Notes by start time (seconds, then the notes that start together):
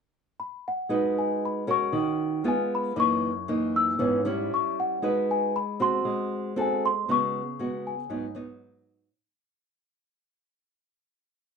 0.40 B5
0.68 F#5
0.89 G#3 D#4 F#4 B4
1.18 G#5
1.45 B5
1.67 C#4 F#4 A#4 C#6
1.93 D#3
2.44 G#3 B3 F4
2.48 G#5
2.75 B5
2.96 F#2 E3 A#3 D#4
3.00 C#6
3.48 E3 A#3 D#4
3.76 E6
3.99 G#2 E3 B3 C#4
4.25 G3 C#4 E4
4.54 C#6
4.80 F#5
5.02 G#3 D#4 F#4 B4
5.31 G#5
5.56 B5
5.80 C4 F#4 C6
6.05 G#3
6.56 C4 F#4 A4
6.61 G#5
6.86 C6
7.08 C#3 G#3 B3 F#4 C#6
7.59 G#3 B3 F#4
7.87 G#5
8.10 G#2 F#3 B3 D#4
8.35 F#3 B3 D#4